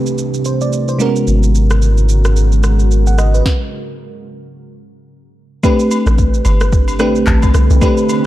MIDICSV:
0, 0, Header, 1, 7, 480
1, 0, Start_track
1, 0, Tempo, 545455
1, 1121, Time_signature, 4, 2, 24, 8
1, 7271, End_track
2, 0, Start_track
2, 0, Title_t, "FM electric piano"
2, 0, Program_c, 0, 5
2, 0, Control_c, 0, 64, 127
2, 0, Note_on_c, 0, 57, 73
2, 0, Note_on_c, 0, 60, 64
2, 0, Note_on_c, 0, 62, 67
2, 0, Note_on_c, 0, 67, 66
2, 0, Note_on_c, 0, 71, 81
2, 148, Note_off_c, 0, 71, 0
2, 403, Note_on_c, 0, 72, 63
2, 534, Note_off_c, 0, 72, 0
2, 541, Note_on_c, 0, 74, 68
2, 769, Note_off_c, 0, 74, 0
2, 781, Note_on_c, 0, 72, 65
2, 841, Note_off_c, 0, 57, 0
2, 844, Note_off_c, 0, 60, 0
2, 848, Note_off_c, 0, 62, 0
2, 851, Note_off_c, 0, 67, 0
2, 867, Note_on_c, 0, 56, 75
2, 874, Note_on_c, 0, 58, 55
2, 881, Note_on_c, 0, 61, 67
2, 886, Note_on_c, 0, 66, 70
2, 892, Note_on_c, 0, 70, 84
2, 893, Control_c, 0, 64, 0
2, 932, Note_on_c, 0, 59, 69
2, 944, Note_off_c, 0, 58, 0
2, 1008, Note_off_c, 0, 72, 0
2, 1033, Control_c, 0, 64, 127
2, 2533, Note_off_c, 0, 70, 0
2, 2702, Note_on_c, 0, 78, 67
2, 2759, Note_off_c, 0, 56, 0
2, 2766, Note_off_c, 0, 61, 0
2, 2768, Note_off_c, 0, 66, 0
2, 2791, Note_off_c, 0, 59, 0
2, 2797, Note_off_c, 0, 78, 0
2, 2802, Note_on_c, 0, 75, 73
2, 2934, Note_off_c, 0, 75, 0
2, 2941, Note_on_c, 0, 71, 63
2, 3054, Control_c, 0, 64, 0
2, 3169, Note_off_c, 0, 71, 0
2, 4957, Note_on_c, 0, 57, 86
2, 4959, Note_on_c, 0, 60, 78
2, 4964, Note_on_c, 0, 62, 74
2, 4966, Note_on_c, 0, 67, 76
2, 4968, Note_on_c, 0, 71, 95
2, 5124, Control_c, 0, 64, 127
2, 5735, Note_off_c, 0, 57, 0
2, 5736, Note_off_c, 0, 60, 0
2, 5738, Note_off_c, 0, 62, 0
2, 5739, Note_off_c, 0, 67, 0
2, 5740, Note_off_c, 0, 71, 0
2, 6154, Note_on_c, 0, 57, 85
2, 6156, Note_on_c, 0, 60, 82
2, 6160, Note_on_c, 0, 62, 80
2, 6163, Note_on_c, 0, 67, 77
2, 6166, Note_on_c, 0, 71, 95
2, 6749, Note_off_c, 0, 57, 0
2, 6750, Note_off_c, 0, 60, 0
2, 6752, Note_off_c, 0, 62, 0
2, 6753, Note_off_c, 0, 67, 0
2, 6755, Note_off_c, 0, 71, 0
2, 6876, Note_on_c, 0, 57, 86
2, 6878, Note_on_c, 0, 60, 77
2, 6882, Note_on_c, 0, 62, 79
2, 6884, Note_on_c, 0, 67, 79
2, 6887, Note_on_c, 0, 71, 99
2, 7271, Note_off_c, 0, 57, 0
2, 7271, Note_off_c, 0, 60, 0
2, 7271, Note_off_c, 0, 62, 0
2, 7271, Note_off_c, 0, 67, 0
2, 7271, Note_off_c, 0, 71, 0
2, 7271, End_track
3, 0, Start_track
3, 0, Title_t, "Ambient pad"
3, 0, Program_c, 1, 92
3, 0, Note_on_c, 1, 48, 76
3, 0, Note_on_c, 1, 57, 71
3, 0, Note_on_c, 1, 64, 73
3, 0, Note_on_c, 1, 67, 83
3, 846, Note_off_c, 1, 48, 0
3, 847, Note_off_c, 1, 57, 0
3, 847, Note_off_c, 1, 67, 0
3, 864, Note_off_c, 1, 64, 0
3, 877, Note_on_c, 1, 49, 86
3, 878, Note_on_c, 1, 56, 76
3, 879, Note_on_c, 1, 66, 91
3, 879, Note_on_c, 1, 70, 76
3, 3018, Note_off_c, 1, 49, 0
3, 3018, Note_off_c, 1, 56, 0
3, 3018, Note_off_c, 1, 66, 0
3, 3019, Note_off_c, 1, 70, 0
3, 4959, Note_on_c, 1, 57, 74
3, 4959, Note_on_c, 1, 60, 72
3, 4959, Note_on_c, 1, 71, 72
3, 4960, Note_on_c, 1, 67, 91
3, 4961, Note_on_c, 1, 50, 78
3, 6861, Note_off_c, 1, 67, 0
3, 7271, Note_off_c, 1, 50, 0
3, 7271, Note_off_c, 1, 57, 0
3, 7271, Note_off_c, 1, 60, 0
3, 7271, Note_off_c, 1, 71, 0
3, 7271, End_track
4, 0, Start_track
4, 0, Title_t, "Log drum bass"
4, 0, Program_c, 2, 39
4, 5337, Note_on_c, 2, 33, 86
4, 5641, Note_off_c, 2, 33, 0
4, 5680, Note_on_c, 2, 31, 89
4, 6160, Note_on_c, 2, 33, 83
4, 6173, Note_off_c, 2, 31, 0
4, 6374, Note_off_c, 2, 33, 0
4, 6400, Note_on_c, 2, 33, 94
4, 6614, Note_off_c, 2, 33, 0
4, 6641, Note_on_c, 2, 36, 91
4, 6765, Note_off_c, 2, 36, 0
4, 6781, Note_on_c, 2, 36, 92
4, 6870, Note_off_c, 2, 36, 0
4, 7271, End_track
5, 0, Start_track
5, 0, Title_t, "Sub bass"
5, 0, Program_c, 3, 38
5, 1121, Note_on_c, 3, 32, 82
5, 3006, Note_off_c, 3, 32, 0
5, 7271, End_track
6, 0, Start_track
6, 0, Title_t, "Downlifter"
6, 0, Program_c, 4, 103
6, 0, Note_on_c, 4, 60, 76
6, 1121, Note_off_c, 4, 60, 0
6, 7271, End_track
7, 0, Start_track
7, 0, Title_t, "Drums"
7, 56, Note_on_c, 9, 82, 53
7, 144, Note_off_c, 9, 82, 0
7, 161, Note_on_c, 9, 82, 71
7, 249, Note_off_c, 9, 82, 0
7, 299, Note_on_c, 9, 82, 55
7, 387, Note_off_c, 9, 82, 0
7, 397, Note_on_c, 9, 82, 75
7, 485, Note_off_c, 9, 82, 0
7, 538, Note_on_c, 9, 82, 53
7, 626, Note_off_c, 9, 82, 0
7, 641, Note_on_c, 9, 82, 69
7, 729, Note_off_c, 9, 82, 0
7, 777, Note_on_c, 9, 82, 53
7, 865, Note_off_c, 9, 82, 0
7, 880, Note_on_c, 9, 82, 87
7, 968, Note_off_c, 9, 82, 0
7, 1022, Note_on_c, 9, 82, 60
7, 1110, Note_off_c, 9, 82, 0
7, 1121, Note_on_c, 9, 82, 71
7, 1209, Note_off_c, 9, 82, 0
7, 1260, Note_on_c, 9, 82, 51
7, 1348, Note_off_c, 9, 82, 0
7, 1363, Note_on_c, 9, 82, 83
7, 1451, Note_off_c, 9, 82, 0
7, 1500, Note_on_c, 9, 82, 52
7, 1502, Note_on_c, 9, 37, 100
7, 1588, Note_off_c, 9, 82, 0
7, 1590, Note_off_c, 9, 37, 0
7, 1602, Note_on_c, 9, 82, 64
7, 1690, Note_off_c, 9, 82, 0
7, 1740, Note_on_c, 9, 82, 55
7, 1828, Note_off_c, 9, 82, 0
7, 1839, Note_on_c, 9, 82, 88
7, 1927, Note_off_c, 9, 82, 0
7, 1977, Note_on_c, 9, 82, 53
7, 1980, Note_on_c, 9, 37, 95
7, 2065, Note_off_c, 9, 82, 0
7, 2068, Note_off_c, 9, 37, 0
7, 2082, Note_on_c, 9, 82, 74
7, 2170, Note_off_c, 9, 82, 0
7, 2219, Note_on_c, 9, 82, 54
7, 2307, Note_off_c, 9, 82, 0
7, 2318, Note_on_c, 9, 82, 75
7, 2321, Note_on_c, 9, 37, 92
7, 2406, Note_off_c, 9, 82, 0
7, 2409, Note_off_c, 9, 37, 0
7, 2460, Note_on_c, 9, 82, 50
7, 2548, Note_off_c, 9, 82, 0
7, 2564, Note_on_c, 9, 82, 72
7, 2652, Note_off_c, 9, 82, 0
7, 2699, Note_on_c, 9, 82, 53
7, 2787, Note_off_c, 9, 82, 0
7, 2802, Note_on_c, 9, 82, 86
7, 2803, Note_on_c, 9, 37, 85
7, 2890, Note_off_c, 9, 82, 0
7, 2891, Note_off_c, 9, 37, 0
7, 2945, Note_on_c, 9, 82, 60
7, 3033, Note_off_c, 9, 82, 0
7, 3042, Note_on_c, 9, 36, 105
7, 3042, Note_on_c, 9, 38, 88
7, 3130, Note_off_c, 9, 36, 0
7, 3130, Note_off_c, 9, 38, 0
7, 4958, Note_on_c, 9, 67, 68
7, 4961, Note_on_c, 9, 36, 104
7, 4962, Note_on_c, 9, 82, 74
7, 5046, Note_off_c, 9, 67, 0
7, 5049, Note_off_c, 9, 36, 0
7, 5050, Note_off_c, 9, 82, 0
7, 5099, Note_on_c, 9, 82, 55
7, 5187, Note_off_c, 9, 82, 0
7, 5203, Note_on_c, 9, 67, 71
7, 5203, Note_on_c, 9, 82, 91
7, 5291, Note_off_c, 9, 67, 0
7, 5291, Note_off_c, 9, 82, 0
7, 5340, Note_on_c, 9, 82, 56
7, 5342, Note_on_c, 9, 37, 108
7, 5428, Note_off_c, 9, 82, 0
7, 5430, Note_off_c, 9, 37, 0
7, 5442, Note_on_c, 9, 36, 87
7, 5442, Note_on_c, 9, 82, 64
7, 5530, Note_off_c, 9, 36, 0
7, 5530, Note_off_c, 9, 82, 0
7, 5580, Note_on_c, 9, 82, 60
7, 5668, Note_off_c, 9, 82, 0
7, 5674, Note_on_c, 9, 67, 70
7, 5679, Note_on_c, 9, 82, 90
7, 5762, Note_off_c, 9, 67, 0
7, 5767, Note_off_c, 9, 82, 0
7, 5815, Note_on_c, 9, 82, 51
7, 5818, Note_on_c, 9, 37, 99
7, 5903, Note_off_c, 9, 82, 0
7, 5906, Note_off_c, 9, 37, 0
7, 5918, Note_on_c, 9, 82, 81
7, 5919, Note_on_c, 9, 36, 124
7, 6006, Note_off_c, 9, 82, 0
7, 6007, Note_off_c, 9, 36, 0
7, 6053, Note_on_c, 9, 67, 65
7, 6057, Note_on_c, 9, 82, 57
7, 6141, Note_off_c, 9, 67, 0
7, 6145, Note_off_c, 9, 82, 0
7, 6155, Note_on_c, 9, 82, 79
7, 6158, Note_on_c, 9, 37, 98
7, 6243, Note_off_c, 9, 82, 0
7, 6246, Note_off_c, 9, 37, 0
7, 6297, Note_on_c, 9, 82, 53
7, 6385, Note_off_c, 9, 82, 0
7, 6395, Note_on_c, 9, 39, 94
7, 6395, Note_on_c, 9, 77, 78
7, 6398, Note_on_c, 9, 82, 72
7, 6401, Note_on_c, 9, 36, 94
7, 6483, Note_off_c, 9, 39, 0
7, 6483, Note_off_c, 9, 77, 0
7, 6486, Note_off_c, 9, 82, 0
7, 6489, Note_off_c, 9, 36, 0
7, 6534, Note_on_c, 9, 67, 74
7, 6535, Note_on_c, 9, 82, 54
7, 6540, Note_on_c, 9, 36, 89
7, 6622, Note_off_c, 9, 67, 0
7, 6623, Note_off_c, 9, 82, 0
7, 6628, Note_off_c, 9, 36, 0
7, 6638, Note_on_c, 9, 82, 92
7, 6639, Note_on_c, 9, 37, 91
7, 6726, Note_off_c, 9, 82, 0
7, 6727, Note_off_c, 9, 37, 0
7, 6781, Note_on_c, 9, 82, 61
7, 6869, Note_off_c, 9, 82, 0
7, 6877, Note_on_c, 9, 67, 67
7, 6879, Note_on_c, 9, 36, 109
7, 6879, Note_on_c, 9, 82, 79
7, 6965, Note_off_c, 9, 67, 0
7, 6967, Note_off_c, 9, 36, 0
7, 6967, Note_off_c, 9, 82, 0
7, 7017, Note_on_c, 9, 82, 56
7, 7105, Note_off_c, 9, 82, 0
7, 7122, Note_on_c, 9, 82, 93
7, 7123, Note_on_c, 9, 67, 74
7, 7210, Note_off_c, 9, 82, 0
7, 7211, Note_off_c, 9, 67, 0
7, 7271, End_track
0, 0, End_of_file